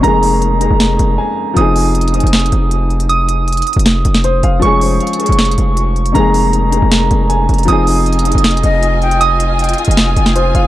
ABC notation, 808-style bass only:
X:1
M:4/4
L:1/16
Q:1/4=157
K:Fm
V:1 name="808-style bass" clef=bass
F,,,6- F,,, F,,,3 F,,,2 z4 | F,,,6- F,,, F,,,3 F,,,6- | F,,,6 z F,,,3 F,,,4 F,,,2 | F,,,4 z3 F,,,3 F,,,6 |
F,,,6- F,,, F,,,3 F,,,4 F,,,2 | F,,,6- F,,, F,,,3 F,,,6- | F,,,6 z F,,,3 F,,,4 F,,,2 |]